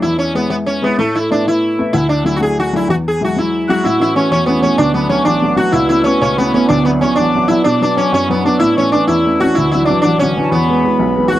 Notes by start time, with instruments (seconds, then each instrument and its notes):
0.02 upright piano E2, sitar E4
0.19 sitar C#4
0.35 upright piano G#3 B3 E4, sitar B3
0.49 upright piano G#3 B3 E4, sitar B3
0.66 sitar C#4
0.82 upright piano G#3 B3 E4, sitar B3
0.98 upright piano A2, sitar A3
1.15 sitar E4
1.31 upright piano A3 B3 E4, sitar D4
1.46 upright piano A3 B3 E4, sitar E4
1.79 upright piano A3 B3 E4
1.93 upright piano D2, sitar E4
2.09 sitar D4
2.24 upright piano F#3 A3 D4, sitar E4
2.36 sitar F#4
2.40 upright piano F#3 A3 D4, sitar G#4
2.60 sitar F#4
2.73 upright piano F#3 A3 D4, sitar E4
2.88 upright piano E2, sitar F#4
3.08 sitar G#4
3.21 upright piano F#3 G#3 E4, sitar F#4
3.36 upright piano F#3 G#3 E4, sitar E4
3.68 upright piano F#3 G#3 E4, hammered dulcimer F#4, sitar F#4, tin whistle F#6
3.83 upright piano A2, hammered dulcimer E4, sitar E4, tin whistle E6
3.99 upright piano E3 A3 C#4, hammered dulcimer E4, sitar E4, tin whistle E6
4.15 upright piano E3 A3 C#4, hammered dulcimer C#4, sitar C#4, tin whistle C#6
4.30 upright piano E2, hammered dulcimer C#4, sitar C#4, tin whistle C#6
4.44 upright piano E3 A3, sitar B3, hammered dulcimer B3, tin whistle C#6
4.48 upright piano C#4, tin whistle B5
4.62 upright piano E3 A3 C#4, hammered dulcimer C#4, sitar C#4, tin whistle C#6
4.77 upright piano D2, hammered dulcimer D4, sitar D4, tin whistle D6
4.94 upright piano F#3 A3 D4, sitar B3, hammered dulcimer B3, tin whistle B5
5.09 upright piano F#3 A3 D4, hammered dulcimer C#4, sitar C#4, tin whistle C#6
5.24 upright piano A1, hammered dulcimer D4, sitar D4, tin whistle D6
5.35 hammered dulcimer D4
5.42 upright piano F#3 A3 D4
5.47 hammered dulcimer D4
5.55 upright piano F#3 A3 D4, hammered dulcimer F#4, sitar F#4, tin whistle F#6
5.71 upright piano C#2, hammered dulcimer E4, sitar E4, tin whistle E6
5.89 upright piano A3 B3 C#4, sitar E4, hammered dulcimer E4, tin whistle E6
6.04 upright piano A3 B3 C#4, sitar C#4, hammered dulcimer C#4, tin whistle C#6
6.21 upright piano C#2, hammered dulcimer C#4, sitar C#4, tin whistle C#6
6.36 upright piano A3 B3 C#4, hammered dulcimer B3, sitar B3, tin whistle B5
6.46 hammered dulcimer B3
6.54 upright piano A3 B3 C#4, hammered dulcimer B3, sitar C#4
6.66 hammered dulcimer D4, sitar D4, tin whistle D6
6.70 upright piano D2
6.82 hammered dulcimer B3, sitar B3, tin whistle B5
6.87 upright piano F#3 D4 E4
6.99 upright piano F#3, hammered dulcimer C#4, sitar C#4, tin whistle C#6
7.03 upright piano D4 E4
7.15 hammered dulcimer D4, sitar D4, tin whistle D6
7.19 upright piano A1
7.34 upright piano F#3 D4 E4, hammered dulcimer D4
7.48 upright piano F#3 D4 E4, sitar E4, hammered dulcimer E4, tin whistle E6
7.64 upright piano B2, sitar D4, hammered dulcimer D4, tin whistle E6
7.69 tin whistle D6
7.81 upright piano F#3 B3 D4, hammered dulcimer D4, sitar D4
7.94 upright piano F#3 B3, hammered dulcimer C#4 D4, sitar C#4
7.98 upright piano D4
8.11 upright piano F#2, hammered dulcimer C#4, sitar C#4, tin whistle C#6
8.27 upright piano F#3 B3 D4, hammered dulcimer B3, sitar B3, tin whistle B5
8.44 upright piano F#3 B3 D4, hammered dulcimer D4, sitar D4, tin whistle D6
8.58 upright piano A2, hammered dulcimer E4, sitar E4, tin whistle E6
8.77 upright piano E3 A3 C#4, hammered dulcimer C#4, sitar C#4, tin whistle C#6
8.92 upright piano E3 A3 C#4, sitar D4, hammered dulcimer D4, tin whistle D6
9.07 upright piano E2, sitar E4, hammered dulcimer E4, tin whistle E6
9.26 upright piano E3 A3 C#4
9.40 upright piano E3 A3 C#4, sitar F#4, hammered dulcimer F#4, tin whistle F#6
9.55 upright piano D2, sitar E4, hammered dulcimer E4, tin whistle E6
9.71 upright piano E3 F#3 D4, sitar E4, hammered dulcimer E4, tin whistle E6
9.85 sitar D4, hammered dulcimer D4, tin whistle D6
9.90 upright piano E3 F#3 D4
10.02 upright piano A1, sitar D4, hammered dulcimer D4, tin whistle D6
10.19 upright piano D3 E3 F#3, sitar C#4, hammered dulcimer C#4
10.36 upright piano E3 F#3 D4, hammered dulcimer C#4
10.43 tin whistle A5
10.50 upright piano E2, hammered dulcimer B3, sitar B3, tin whistle B5
10.69 upright piano E3 G#3 B3
10.84 upright piano E3 G#3 B3
10.99 upright piano B1
11.16 upright piano E3 G#3 B3
11.28 upright piano E3, sitar F#4, hammered dulcimer F#4, tin whistle F#6
11.33 upright piano G#3 B3